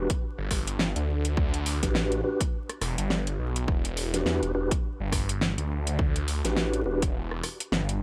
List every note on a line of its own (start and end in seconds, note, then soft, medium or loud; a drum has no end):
0.00 0.10 D4 medium
0.00 0.10 F#4 medium
0.00 0.10 G4 medium
0.00 0.10 B4 loud
0.10 kick loud
0.10 closed hi-hat medium
0.38 0.93 G1 loud
0.51 kick medium
0.51 cross-stick medium
0.51 open hi-hat medium
0.67 closed hi-hat medium
0.79 snare loud
0.96 1.80 D2 loud
0.96 closed hi-hat medium
1.25 closed hi-hat medium
1.37 kick loud
1.54 closed hi-hat medium
1.66 open hi-hat medium
1.83 2.22 A1 loud
1.83 2.21 D4 medium
1.83 2.21 F#4 medium
1.83 2.21 G4 medium
1.83 2.21 B4 medium
1.83 kick medium
1.83 snare soft
1.83 closed hi-hat medium
1.95 snare loud
2.12 closed hi-hat soft
2.24 2.41 D4 medium
2.24 2.41 F#4 medium
2.24 2.41 G4 medium
2.24 2.41 B4 loud
2.40 kick loud
2.40 closed hi-hat medium
2.70 cross-stick medium
2.70 closed hi-hat soft
2.81 2.96 E1 loud
2.81 cross-stick medium
2.81 open hi-hat medium
2.98 3.37 G1 loud
2.98 closed hi-hat medium
3.10 snare loud
3.27 closed hi-hat medium
3.39 3.66 B1 loud
3.56 closed hi-hat medium
3.68 4.24 E1 medium
3.68 kick loud
3.85 closed hi-hat medium
3.97 open hi-hat medium
4.14 4.52 D4 medium
4.14 4.52 F#4 medium
4.14 4.52 G4 medium
4.14 4.52 B4 medium
4.14 snare soft
4.14 closed hi-hat medium
4.25 4.40 E2 loud
4.25 snare loud
4.42 4.53 E1 loud
4.42 closed hi-hat soft
4.55 4.69 E1 loud
4.55 4.72 D4 medium
4.55 4.72 F#4 medium
4.55 4.72 G4 medium
4.55 4.72 B4 loud
4.71 kick loud
4.71 closed hi-hat medium
5.00 5.55 G1 medium
5.12 kick medium
5.12 cross-stick medium
5.12 open hi-hat medium
5.29 closed hi-hat medium
5.41 snare loud
5.58 6.42 D2 medium
5.58 closed hi-hat medium
5.87 closed hi-hat medium
5.99 kick loud
6.16 closed hi-hat medium
6.28 open hi-hat medium
6.44 6.83 A1 loud
6.44 6.83 D4 medium
6.44 6.83 F#4 medium
6.44 6.83 G4 medium
6.44 6.83 B4 medium
6.44 snare soft
6.44 closed hi-hat medium
6.57 snare loud
6.74 closed hi-hat soft
6.85 7.41 E1 loud
6.85 7.03 D4 medium
6.85 7.03 F#4 medium
6.85 7.03 G4 medium
6.85 7.03 B4 loud
7.02 kick loud
7.02 closed hi-hat medium
7.31 cross-stick medium
7.43 cross-stick medium
7.43 open hi-hat medium
7.60 closed hi-hat medium
7.72 8.03 G1 loud
7.72 snare loud
7.89 closed hi-hat medium